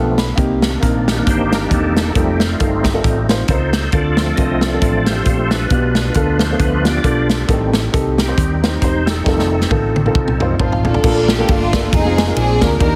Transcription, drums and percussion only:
0.18 snare loud
0.18 closed hi-hat medium
0.38 kick loud
0.38 closed hi-hat medium
0.62 snare loud
0.62 closed hi-hat medium
0.82 kick medium
0.82 closed hi-hat medium
1.08 snare medium
1.08 closed hi-hat medium
1.27 kick loud
1.27 closed hi-hat medium
1.52 snare loud
1.52 closed hi-hat medium
1.71 kick medium
1.71 closed hi-hat medium
1.97 snare loud
1.97 closed hi-hat medium
2.15 kick loud
2.15 closed hi-hat medium
2.40 snare loud
2.40 closed hi-hat medium
2.60 kick medium
2.60 closed hi-hat medium
2.84 kick medium
2.84 snare medium
2.84 closed hi-hat medium
3.04 kick loud
3.04 closed hi-hat medium
3.29 snare loud
3.29 closed hi-hat medium
3.48 kick medium
3.48 closed hi-hat medium
3.73 snare loud
3.73 closed hi-hat medium
3.92 kick loud
3.92 closed hi-hat medium
4.17 snare loud
4.17 closed hi-hat medium
4.37 kick medium
4.37 closed hi-hat medium
4.61 snare medium
4.61 closed hi-hat medium
4.82 kick loud
4.82 closed hi-hat medium
5.06 snare loud
5.06 closed hi-hat medium
5.25 kick medium
5.25 closed hi-hat medium
5.51 snare loud
5.51 closed hi-hat medium
5.70 kick loud
5.70 closed hi-hat medium
5.95 snare loud
5.95 closed hi-hat medium
6.14 kick medium
6.14 closed hi-hat medium
6.39 snare loud
6.39 closed hi-hat medium
6.60 kick loud
6.60 closed hi-hat medium
6.85 snare loud
6.85 closed hi-hat medium
7.04 kick medium
7.04 closed hi-hat medium
7.30 snare loud
7.30 closed hi-hat medium
7.49 kick loud
7.49 closed hi-hat medium
7.73 snare loud
7.73 closed hi-hat medium
7.94 kick medium
7.94 closed hi-hat medium
8.18 snare medium
8.18 closed hi-hat medium
8.38 kick loud
8.38 closed hi-hat medium
8.64 snare loud
8.64 closed hi-hat medium
8.82 kick medium
8.82 closed hi-hat medium
9.07 snare loud
9.07 closed hi-hat medium
9.26 kick loud
9.26 snare soft
9.39 snare soft
9.61 snare medium
9.70 kick medium
9.70 high tom medium
9.96 high tom medium
10.06 mid tom medium
10.15 kick loud
10.28 mid tom medium
10.40 mid tom medium
10.60 kick medium
10.60 mid tom medium
10.72 floor tom medium
10.85 floor tom loud
10.94 floor tom medium
11.04 kick loud
11.04 crash loud
11.28 snare loud
11.28 ride soft
11.48 kick loud
11.48 ride medium
11.73 kick loud
11.73 snare loud
11.73 ride medium
11.93 kick loud
11.93 ride medium
12.18 snare loud
12.18 ride medium
12.36 ride medium
12.61 kick medium
12.61 snare loud
12.61 ride medium
12.80 kick loud
12.80 ride medium

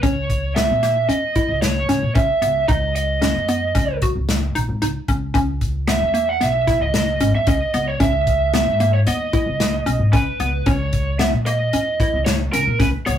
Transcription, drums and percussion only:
0.03 kick medium
0.03 closed hi-hat medium
0.30 kick medium
0.30 closed hi-hat medium
0.56 snare loud
0.56 closed hi-hat medium
0.83 snare soft
0.83 closed hi-hat medium
1.09 closed hi-hat medium
1.36 kick medium
1.36 closed hi-hat medium
1.62 snare medium
1.62 closed hi-hat medium
1.89 snare soft
1.89 closed hi-hat medium
2.15 kick loud
2.15 closed hi-hat medium
2.42 closed hi-hat medium
2.69 kick medium
2.69 closed hi-hat medium
2.96 closed hi-hat medium
3.22 snare medium
3.22 closed hi-hat medium
3.48 closed hi-hat medium
3.75 kick medium
3.75 snare soft
3.75 closed hi-hat medium
4.02 kick medium
4.02 closed hi-hat medium
4.29 snare medium
4.29 closed hi-hat medium
4.56 closed hi-hat medium
4.82 closed hi-hat medium
5.08 kick medium
5.08 closed hi-hat medium
5.35 kick medium
5.35 closed hi-hat medium
5.61 kick medium
5.61 closed hi-hat medium
5.88 snare medium
5.88 closed hi-hat medium
6.15 closed hi-hat medium
6.41 snare soft
6.41 closed hi-hat medium
6.67 kick medium
6.67 snare soft
6.67 closed hi-hat medium
6.94 snare loud
6.94 closed hi-hat medium
7.20 closed hi-hat medium
7.47 kick loud
7.47 closed hi-hat medium
7.74 closed hi-hat medium
8.00 kick medium
8.00 closed hi-hat medium
8.27 kick medium
8.27 closed hi-hat medium
8.54 snare loud
8.54 closed hi-hat medium
8.80 closed hi-hat medium
9.07 closed hi-hat medium
9.33 kick medium
9.33 closed hi-hat medium
9.60 snare loud
9.60 closed hi-hat medium
9.87 closed hi-hat medium
10.13 kick loud
10.13 closed hi-hat medium
10.40 closed hi-hat medium
10.66 kick medium
10.66 closed hi-hat medium
10.93 kick medium
10.93 closed hi-hat medium
11.19 snare medium
11.19 closed hi-hat medium
11.46 closed hi-hat medium
11.73 closed hi-hat medium
12.00 kick medium
12.00 closed hi-hat medium
12.26 snare loud
12.26 closed hi-hat medium
12.54 closed hi-hat medium
12.80 kick loud
12.80 snare soft
12.80 closed hi-hat medium
13.07 closed hi-hat medium

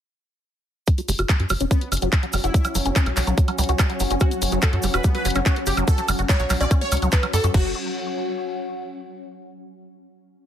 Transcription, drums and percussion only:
0.87 kick loud
0.87 closed hi-hat medium
0.87 cabasa soft
0.98 closed hi-hat medium
0.98 cabasa soft
1.08 open hi-hat loud
1.08 cabasa medium
1.18 closed hi-hat medium
1.18 cabasa soft
1.18 high woodblock soft
1.29 kick loud
1.29 clap loud
1.29 closed hi-hat medium
1.29 cabasa medium
1.40 closed hi-hat medium
1.49 open hi-hat medium
1.49 cabasa medium
1.49 high woodblock medium
1.60 closed hi-hat medium
1.60 cabasa soft
1.71 kick loud
1.71 closed hi-hat medium
1.71 cabasa soft
1.81 closed hi-hat medium
1.92 open hi-hat loud
1.92 cabasa medium
1.92 high woodblock soft
1.97 closed hi-hat medium
2.01 closed hi-hat medium
2.01 cabasa soft
2.12 kick loud
2.12 clap loud
2.12 closed hi-hat medium
2.12 cabasa medium
2.23 closed hi-hat medium
2.33 open hi-hat medium
2.33 cabasa medium
2.33 high woodblock soft
2.44 closed hi-hat medium
2.44 cabasa soft
2.54 kick loud
2.54 closed hi-hat medium
2.54 cabasa medium
2.65 closed hi-hat medium
2.65 cabasa soft
2.65 high woodblock medium
2.75 open hi-hat loud
2.75 cabasa medium
2.86 closed hi-hat medium
2.86 cabasa soft
2.96 kick loud
2.96 clap loud
2.96 closed hi-hat medium
2.96 cabasa medium
3.06 closed hi-hat medium
3.06 high woodblock soft
3.17 clap medium
3.17 open hi-hat medium
3.17 cabasa medium
3.27 closed hi-hat medium
3.27 cabasa soft
3.38 kick loud
3.38 closed hi-hat medium
3.38 cabasa medium
3.48 closed hi-hat medium
3.48 high woodblock soft
3.58 open hi-hat loud
3.58 cabasa medium
3.64 closed hi-hat medium
3.69 closed hi-hat medium
3.69 cabasa soft
3.79 kick loud
3.79 clap loud
3.79 closed hi-hat medium
3.79 cabasa medium
3.79 high woodblock medium
3.90 closed hi-hat medium
4.00 open hi-hat loud
4.00 cabasa medium
4.11 closed hi-hat medium
4.11 cabasa soft
4.20 kick loud
4.20 closed hi-hat medium
4.20 cabasa medium
4.20 high woodblock soft
4.31 closed hi-hat soft
4.31 cabasa soft
4.42 open hi-hat loud
4.42 cabasa loud
4.52 closed hi-hat medium
4.52 cabasa soft
4.62 kick loud
4.62 clap loud
4.62 closed hi-hat medium
4.62 cabasa medium
4.62 high woodblock soft
4.73 closed hi-hat soft
4.83 open hi-hat loud
4.83 cabasa medium
4.94 closed hi-hat soft
4.94 cabasa soft
4.94 high woodblock medium
5.04 kick loud
5.04 closed hi-hat medium
5.04 cabasa medium
5.15 closed hi-hat medium
5.25 open hi-hat loud
5.25 cabasa loud
5.30 closed hi-hat medium
5.35 closed hi-hat soft
5.35 cabasa soft
5.35 high woodblock soft
5.46 kick loud
5.46 clap loud
5.46 closed hi-hat medium
5.46 cabasa medium
5.56 closed hi-hat medium
5.66 open hi-hat loud
5.66 cabasa loud
5.77 closed hi-hat medium
5.77 cabasa soft
5.77 high woodblock soft
5.88 kick loud
5.88 closed hi-hat medium
5.88 cabasa medium
5.98 closed hi-hat soft
5.98 cabasa soft
6.08 open hi-hat loud
6.08 cabasa medium
6.08 high woodblock medium
6.19 closed hi-hat medium
6.19 cabasa soft
6.29 kick loud
6.29 clap loud
6.29 closed hi-hat medium
6.29 cabasa medium
6.40 closed hi-hat medium
6.40 cabasa soft
6.50 clap medium
6.50 open hi-hat loud
6.50 cabasa medium
6.50 high woodblock soft
6.61 closed hi-hat medium
6.61 cabasa soft
6.71 kick loud
6.71 closed hi-hat medium
6.71 cabasa medium
6.81 closed hi-hat soft
6.92 open hi-hat loud
6.92 cabasa medium
6.92 high woodblock soft
6.97 closed hi-hat medium
7.02 closed hi-hat soft
7.02 cabasa soft
7.12 kick loud
7.12 clap loud
7.12 closed hi-hat medium
7.12 cabasa medium
7.23 closed hi-hat medium
7.23 high woodblock medium
7.33 open hi-hat loud
7.33 cabasa medium
7.43 closed hi-hat medium
7.43 cabasa soft
7.54 kick loud
7.54 crash medium

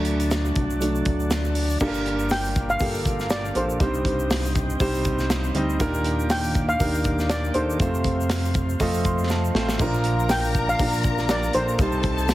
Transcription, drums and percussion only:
0.05 closed hi-hat medium
0.05 shaker soft
0.20 closed hi-hat soft
0.20 shaker medium
0.31 snare loud
0.31 closed hi-hat medium
0.31 shaker medium
0.45 shaker soft
0.56 kick loud
0.56 closed hi-hat medium
0.70 shaker soft
0.81 closed hi-hat medium
0.81 shaker medium
0.95 shaker medium
1.05 kick medium
1.05 closed hi-hat medium
1.20 shaker soft
1.30 snare loud
1.30 closed hi-hat loud
1.30 shaker medium
1.44 shaker soft
1.55 open hi-hat medium
1.55 shaker soft
1.70 shaker medium
1.80 kick loud
1.80 crash medium
1.80 shaker medium
1.94 shaker medium
2.06 hi-hat pedal medium
2.06 open hi-hat medium
2.19 shaker medium
2.29 snare loud
2.29 hi-hat pedal medium
2.29 open hi-hat loud
2.29 shaker medium
2.45 shaker soft
2.55 kick loud
2.55 hi-hat pedal medium
2.55 open hi-hat medium
2.55 shaker medium
2.70 shaker soft
2.79 kick loud
2.79 hi-hat pedal medium
2.79 open hi-hat medium
2.79 shaker medium
2.94 shaker medium
3.05 kick medium
3.05 hi-hat pedal medium
3.05 open hi-hat medium
3.05 shaker medium
3.19 snare soft
3.19 shaker soft
3.30 snare loud
3.30 hi-hat pedal medium
3.30 open hi-hat loud
3.30 shaker medium
3.45 shaker medium
3.55 hi-hat pedal medium
3.55 open hi-hat medium
3.70 shaker medium
3.80 kick loud
3.80 hi-hat pedal medium
3.80 open hi-hat medium
3.80 shaker medium
3.94 shaker medium
4.05 kick medium
4.05 hi-hat pedal medium
4.05 open hi-hat medium
4.19 shaker medium
4.30 snare loud
4.30 hi-hat pedal medium
4.30 open hi-hat loud
4.30 shaker medium
4.45 shaker soft
4.55 kick loud
4.55 hi-hat pedal medium
4.55 open hi-hat medium
4.55 shaker medium
4.70 shaker soft
4.80 kick loud
4.80 hi-hat pedal medium
4.80 open hi-hat medium
4.80 shaker medium
4.95 shaker medium
5.05 kick loud
5.05 hi-hat pedal medium
5.05 open hi-hat medium
5.05 shaker medium
5.19 snare soft
5.19 shaker soft
5.30 snare loud
5.30 hi-hat pedal medium
5.30 open hi-hat loud
5.30 shaker medium
5.44 shaker medium
5.55 hi-hat pedal medium
5.55 open hi-hat medium
5.70 shaker medium
5.80 kick loud
5.80 hi-hat pedal medium
5.80 open hi-hat medium
5.80 shaker medium
5.94 shaker medium
6.04 hi-hat pedal medium
6.04 open hi-hat medium
6.20 shaker medium
6.30 snare loud
6.30 hi-hat pedal medium
6.30 open hi-hat loud
6.30 shaker medium
6.44 shaker medium
6.54 kick loud
6.54 hi-hat pedal medium
6.54 open hi-hat medium
6.54 shaker medium
6.69 shaker soft
6.80 kick loud
6.80 hi-hat pedal medium
6.80 open hi-hat medium
6.80 shaker medium
6.95 shaker medium
7.04 kick medium
7.04 hi-hat pedal medium
7.04 open hi-hat medium
7.04 shaker medium
7.19 snare soft
7.19 shaker soft
7.29 snare loud
7.29 hi-hat pedal medium
7.29 open hi-hat loud
7.29 shaker medium
7.44 shaker medium
7.54 hi-hat pedal medium
7.54 open hi-hat medium
7.70 shaker medium
7.80 kick loud
7.80 hi-hat pedal medium
7.80 open hi-hat medium
7.80 shaker medium
7.94 shaker medium
8.04 kick medium
8.04 hi-hat pedal medium
8.04 open hi-hat medium
8.21 shaker medium
8.29 snare loud
8.29 hi-hat pedal medium
8.29 open hi-hat loud
8.29 shaker medium
8.45 shaker medium
8.54 kick loud
8.54 hi-hat pedal medium
8.54 open hi-hat medium
8.54 shaker medium
8.69 shaker soft
8.80 kick loud
8.80 hi-hat pedal medium
8.80 open hi-hat loud
8.80 shaker medium
8.94 shaker medium
9.05 kick medium
9.05 hi-hat pedal medium
9.05 open hi-hat medium
9.05 shaker medium
9.18 shaker soft
9.29 snare medium
9.29 shaker medium
9.45 shaker medium
9.55 snare medium
9.69 snare medium
9.69 shaker medium
9.79 kick loud
9.79 splash medium
9.79 shaker medium
9.94 shaker medium
10.04 hi-hat pedal medium
10.04 open hi-hat medium
10.20 shaker medium
10.29 snare loud
10.29 hi-hat pedal medium
10.29 open hi-hat loud
10.29 shaker medium
10.44 shaker medium
10.55 kick loud
10.55 hi-hat pedal medium
10.55 open hi-hat medium
10.55 shaker medium
10.69 shaker medium
10.79 kick loud
10.79 hi-hat pedal medium
10.79 open hi-hat medium
10.79 shaker medium
10.93 shaker medium
11.03 kick medium
11.03 hi-hat pedal medium
11.03 open hi-hat medium
11.03 shaker medium
11.18 snare soft
11.18 shaker soft
11.29 snare loud
11.29 hi-hat pedal medium
11.29 open hi-hat medium
11.29 shaker medium
11.43 shaker soft
11.53 hi-hat pedal medium
11.53 open hi-hat medium
11.68 shaker medium
11.79 kick loud
11.79 hi-hat pedal medium
11.79 open hi-hat medium
11.79 shaker medium
11.92 shaker medium
12.03 kick medium
12.03 hi-hat pedal medium
12.03 open hi-hat medium
12.18 shaker medium
12.28 snare loud
12.28 hi-hat pedal medium
12.28 open hi-hat loud
12.28 shaker medium

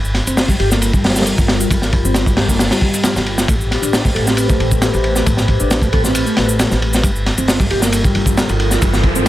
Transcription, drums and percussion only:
0.05 shaker soft
0.14 snare soft
0.14 ride medium
0.27 ride soft
0.27 shaker medium
0.37 snare loud
0.37 open hi-hat medium
0.37 shaker medium
0.48 kick loud
0.48 shaker soft
0.60 ride medium
0.71 snare medium
0.71 shaker medium
0.82 ride medium
0.82 shaker medium
0.93 kick medium
0.93 shaker soft
1.04 snare medium
1.04 open hi-hat medium
1.10 snare medium
1.10 open hi-hat medium
1.16 snare medium
1.16 open hi-hat medium
1.16 shaker medium
1.21 snare medium
1.21 open hi-hat medium
1.26 ride medium
1.26 shaker medium
1.38 kick medium
1.38 shaker soft
1.48 snare loud
1.48 ride medium
1.60 ride soft
1.60 shaker medium
1.71 kick loud
1.71 ride medium
1.71 shaker medium
1.82 snare medium
1.82 shaker soft
1.93 kick loud
1.93 ride medium
2.05 shaker medium
2.14 snare loud
2.14 ride medium
2.14 shaker medium
2.26 kick loud
2.26 shaker soft
2.37 snare loud
2.37 open hi-hat medium
2.48 kick medium
2.48 shaker medium
2.59 snare loud
2.59 open hi-hat medium
2.59 shaker medium
2.71 snare loud
2.71 open hi-hat medium
2.71 shaker soft
2.81 kick medium
2.94 ride medium
2.94 shaker medium
3.03 snare loud
3.03 ride medium
3.03 shaker medium
3.16 snare medium
3.16 shaker soft
3.26 ride medium
3.38 snare medium
3.38 shaker medium
3.48 kick loud
3.48 ride medium
3.48 shaker soft
3.61 shaker soft
3.71 snare soft
3.71 ride medium
3.83 ride soft
3.83 shaker medium
3.93 snare loud
3.93 open hi-hat medium
3.93 shaker soft
4.05 kick loud
4.05 shaker soft
4.16 ride medium
4.27 snare medium
4.27 shaker medium
4.37 ride medium
4.37 shaker soft
4.49 kick loud
4.49 shaker soft
4.60 ride medium
4.71 kick medium
4.71 shaker medium
4.82 snare loud
4.82 ride medium
4.82 shaker soft
4.93 ride soft
4.93 shaker soft
5.04 ride medium
5.16 snare soft
5.16 shaker medium
5.26 kick loud
5.26 ride medium
5.26 shaker medium
5.37 snare medium
5.37 shaker soft
5.48 kick medium
5.48 ride medium
5.60 shaker medium
5.71 snare loud
5.71 ride medium
5.71 shaker soft
5.82 kick medium
5.82 shaker soft
5.93 kick loud
5.93 ride medium
6.05 snare soft
6.05 shaker medium
6.15 ride medium
6.15 shaker soft
6.27 shaker soft
6.37 snare medium
6.37 ride medium
6.49 shaker medium
6.59 snare loud
6.59 ride medium
6.59 shaker medium
6.71 snare medium
6.71 shaker soft
6.82 ride medium
6.93 snare medium
6.93 shaker medium
7.04 kick loud
7.04 ride medium
7.04 shaker medium
7.16 shaker soft
7.26 snare soft
7.26 ride medium
7.38 ride soft
7.38 shaker medium
7.48 snare loud
7.48 open hi-hat medium
7.48 shaker medium
7.60 kick loud
7.60 shaker soft
7.70 ride medium
7.82 snare medium
7.82 shaker medium
7.92 ride loud
7.92 shaker medium
8.04 kick medium
8.04 shaker soft
8.15 ride medium
8.26 kick loud
8.26 shaker medium
8.37 snare loud
8.37 ride medium
8.37 shaker medium
8.49 ride soft
8.49 shaker soft
8.60 ride medium
8.71 snare soft
8.71 shaker medium
8.82 kick loud
8.82 ride medium
8.82 shaker medium
8.93 snare medium
8.93 shaker soft
9.03 kick loud
9.03 ride medium
9.15 shaker medium

